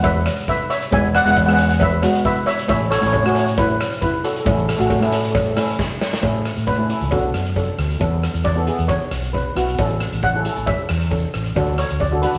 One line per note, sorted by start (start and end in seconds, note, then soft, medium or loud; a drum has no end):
0.00 0.28 E2 loud
0.00 0.23 G#3 medium
0.00 0.23 B3 medium
0.00 0.24 E4 medium
0.00 0.44 B4 medium
0.00 0.45 E5 medium
0.00 kick loud
0.00 closed hi-hat medium
0.04 cowbell loud
0.26 cross-stick loud
0.26 closed hi-hat medium
0.26 cowbell medium
0.38 closed hi-hat medium
0.48 0.69 B4 medium
0.48 0.69 E5 loud
0.48 kick medium
0.48 closed hi-hat medium
0.70 0.90 C#5 medium
0.70 0.92 E5 loud
0.70 closed hi-hat medium
0.70 cowbell medium
0.82 closed hi-hat medium
0.91 1.18 E1 loud
0.91 1.12 G#3 medium
0.91 1.12 B3 medium
0.91 1.12 E4 medium
0.91 1.13 E5 medium
0.91 1.16 G#5 loud
0.91 kick loud
0.91 closed hi-hat medium
0.91 cowbell medium
1.15 1.22 D5 medium
1.15 1.23 F#5 loud
1.15 cross-stick loud
1.15 closed hi-hat loud
1.25 1.34 E1 loud
1.25 1.39 G#3 medium
1.25 1.39 B3 medium
1.25 1.39 E4 medium
1.25 1.30 F#5 loud
1.25 closed hi-hat medium
1.31 1.37 F#5 loud
1.37 2.04 E2 loud
1.37 1.45 F#5 medium
1.37 kick medium
1.37 closed hi-hat medium
1.37 cowbell medium
1.46 1.80 G#3 medium
1.46 1.81 B3 medium
1.46 1.81 C#4 medium
1.46 1.52 F#5 medium
1.46 cross-stick medium
1.53 1.60 F#5 medium
1.58 1.68 F#5 medium
1.58 closed hi-hat loud
1.58 cowbell medium
1.69 1.76 F#5 medium
1.69 closed hi-hat medium
1.80 2.23 B4 medium
1.80 2.24 E5 loud
1.80 kick loud
1.80 closed hi-hat medium
1.80 cowbell loud
2.02 2.42 G#3 medium
2.02 2.43 B3 medium
2.02 2.43 F#4 medium
2.02 cross-stick loud
2.02 closed hi-hat loud
2.02 cowbell medium
2.15 closed hi-hat medium
2.25 2.35 B4 medium
2.25 2.35 E5 loud
2.25 kick loud
2.25 closed hi-hat medium
2.46 2.68 C#5 medium
2.46 2.68 E5 loud
2.46 closed hi-hat medium
2.46 cowbell medium
2.59 closed hi-hat medium
2.67 2.95 A1 loud
2.67 2.88 A3 medium
2.67 2.89 C#4 medium
2.67 2.89 E4 medium
2.67 2.89 C#5 medium
2.67 2.92 E5 loud
2.67 kick loud
2.67 closed hi-hat medium
2.67 cowbell medium
2.90 2.99 A4 medium
2.90 2.97 C#5 loud
2.90 cross-stick loud
2.90 closed hi-hat loud
2.98 3.15 A3 medium
2.98 3.15 C#4 medium
2.98 3.15 E4 medium
2.98 3.06 C#5 medium
3.03 3.11 A1 medium
3.03 3.13 C#5 loud
3.03 closed hi-hat medium
3.13 3.81 A2 loud
3.13 3.21 C#5 medium
3.13 kick loud
3.13 closed hi-hat medium
3.13 cowbell medium
3.22 3.77 A3 medium
3.22 3.77 C#4 medium
3.22 3.78 F#4 medium
3.22 3.28 C#5 medium
3.22 cross-stick medium
3.29 3.35 C#5 medium
3.35 3.43 C#5 medium
3.35 closed hi-hat medium
3.35 cowbell medium
3.45 3.51 C#5 medium
3.45 closed hi-hat medium
3.58 4.00 E4 medium
3.58 4.00 B4 loud
3.58 kick loud
3.58 closed hi-hat medium
3.58 cowbell medium
3.80 cross-stick loud
3.80 closed hi-hat medium
3.80 cowbell medium
3.92 closed hi-hat medium
4.01 4.23 E4 medium
4.01 4.24 B4 medium
4.01 kick medium
4.01 closed hi-hat medium
4.24 4.32 F#4 medium
4.24 4.32 A4 medium
4.24 closed hi-hat medium
4.24 cowbell medium
4.33 4.39 A4 medium
4.33 closed hi-hat medium
4.40 4.46 A4 medium
4.45 4.72 A1 loud
4.45 4.66 A3 medium
4.45 4.66 C#4 medium
4.45 4.66 E4 medium
4.45 4.54 A4 medium
4.45 kick loud
4.45 closed hi-hat medium
4.45 cowbell loud
4.55 4.61 A4 medium
4.63 4.67 A4 soft
4.69 4.75 A4 medium
4.69 cross-stick loud
4.69 closed hi-hat medium
4.77 4.88 A1 medium
4.77 4.92 A3 medium
4.77 4.92 C#4 medium
4.77 4.93 F#4 medium
4.77 4.84 A4 medium
4.77 closed hi-hat medium
4.85 4.91 A4 medium
4.90 5.58 A2 loud
4.90 4.98 A4 medium
4.90 kick loud
4.90 closed hi-hat medium
4.90 cowbell medium
4.99 5.34 A3 medium
4.99 5.34 C#4 medium
4.99 5.35 E4 medium
4.99 5.05 A4 medium
4.99 cross-stick medium
5.06 5.13 A4 soft
5.12 5.22 A4 medium
5.12 closed hi-hat loud
5.12 cowbell medium
5.23 5.29 A4 soft
5.23 closed hi-hat medium
5.31 5.35 A4 medium
5.35 5.44 A4 medium
5.35 kick loud
5.35 closed hi-hat medium
5.35 cowbell loud
5.45 5.50 A4 medium
5.51 5.58 A4 medium
5.56 5.96 A3 medium
5.56 5.97 C#4 medium
5.56 5.97 E4 medium
5.56 5.67 A4 medium
5.56 cross-stick loud
5.56 closed hi-hat medium
5.56 cowbell medium
5.69 closed hi-hat medium
5.79 kick medium
5.79 snare medium
6.01 snare medium
6.01 cowbell medium
6.13 snare loud
6.21 6.49 A2 medium
6.21 6.56 A3 medium
6.21 6.57 C#4 medium
6.21 6.57 E4 medium
6.21 kick loud
6.21 closed hi-hat medium
6.21 cowbell medium
6.45 cross-stick medium
6.45 closed hi-hat medium
6.57 6.91 A2 medium
6.57 closed hi-hat medium
6.67 7.09 B4 loud
6.67 kick medium
6.67 closed hi-hat medium
6.67 cowbell medium
6.78 6.85 A3 medium
6.78 6.85 C#4 medium
6.78 6.85 E4 medium
6.89 7.12 A3 medium
6.89 7.12 C#4 medium
6.89 7.12 E4 medium
6.89 closed hi-hat medium
7.01 7.09 C#2 medium
7.01 closed hi-hat medium
7.11 7.29 B1 medium
7.11 7.83 B3 medium
7.11 7.83 D4 medium
7.11 7.83 F#4 medium
7.11 7.56 A4 medium
7.11 kick loud
7.11 closed hi-hat medium
7.11 cowbell medium
7.34 7.68 F#2 medium
7.34 cross-stick medium
7.34 closed hi-hat medium
7.45 closed hi-hat medium
7.56 7.98 A4 medium
7.56 kick medium
7.56 closed hi-hat medium
7.56 cowbell medium
7.78 7.95 D2 medium
7.78 cross-stick medium
7.78 closed hi-hat medium
7.91 closed hi-hat medium
7.99 8.27 E2 medium
7.99 8.34 B3 medium
7.99 8.34 E4 medium
7.99 8.35 A4 medium
7.99 kick loud
7.99 closed hi-hat medium
7.99 cowbell medium
8.23 cross-stick medium
8.23 closed hi-hat medium
8.34 8.68 E2 medium
8.34 closed hi-hat medium
8.44 8.91 D5 loud
8.44 kick medium
8.44 closed hi-hat medium
8.44 cowbell medium
8.55 8.63 B3 medium
8.55 8.63 E4 medium
8.55 8.63 A4 medium
8.67 9.21 B3 medium
8.67 9.21 E4 medium
8.67 9.22 G#4 medium
8.67 closed hi-hat medium
8.79 8.96 E2 medium
8.79 closed hi-hat medium
8.88 9.35 C#5 medium
8.88 kick loud
8.88 closed hi-hat medium
8.88 cowbell medium
9.11 9.46 B1 medium
9.11 cross-stick medium
9.11 closed hi-hat medium
9.24 closed hi-hat medium
9.33 9.75 B4 medium
9.33 kick medium
9.33 closed hi-hat medium
9.33 cowbell medium
9.55 9.73 B1 medium
9.55 9.70 B3 medium
9.55 9.70 E4 medium
9.55 9.70 F#4 medium
9.55 cross-stick medium
9.55 closed hi-hat medium
9.68 closed hi-hat medium
9.78 10.05 A1 medium
9.78 10.12 C#4 medium
9.78 10.13 E4 medium
9.78 10.13 A4 medium
9.78 kick loud
9.78 closed hi-hat medium
9.78 cowbell medium
10.00 cross-stick medium
10.00 closed hi-hat medium
10.12 10.46 A1 medium
10.12 closed hi-hat medium
10.23 10.65 F#5 medium
10.23 kick medium
10.23 closed hi-hat medium
10.23 cowbell medium
10.34 10.41 C#4 medium
10.34 10.41 E4 medium
10.34 10.42 A4 medium
10.45 10.99 C#4 medium
10.45 10.99 E4 medium
10.45 10.99 A4 medium
10.45 closed hi-hat medium
10.56 10.74 A1 medium
10.56 closed hi-hat medium
10.66 11.13 E5 medium
10.66 kick loud
10.66 closed hi-hat medium
10.66 cowbell medium
10.89 11.24 E2 medium
10.89 cross-stick medium
10.89 closed hi-hat medium
11.01 closed hi-hat medium
11.11 11.53 A4 medium
11.11 kick medium
11.11 closed hi-hat medium
11.11 cowbell medium
11.34 11.51 A1 medium
11.34 cross-stick medium
11.34 closed hi-hat medium
11.46 closed hi-hat medium
11.55 11.82 D2 loud
11.55 11.90 D4 medium
11.55 11.90 F#4 medium
11.55 11.91 A4 medium
11.55 kick loud
11.55 closed hi-hat medium
11.55 cowbell medium
11.78 12.01 C#5 medium
11.78 cross-stick medium
11.78 closed hi-hat medium
11.90 12.24 D2 medium
11.90 closed hi-hat medium
12.00 12.11 D5 medium
12.00 kick medium
12.00 closed hi-hat medium
12.00 cowbell medium
12.12 12.18 D4 medium
12.12 12.19 F#4 medium
12.12 12.19 A4 medium
12.22 12.38 D4 medium
12.22 12.38 F#4 medium
12.22 12.38 B4 medium
12.22 closed hi-hat medium
12.34 12.38 D2 medium
12.34 closed hi-hat medium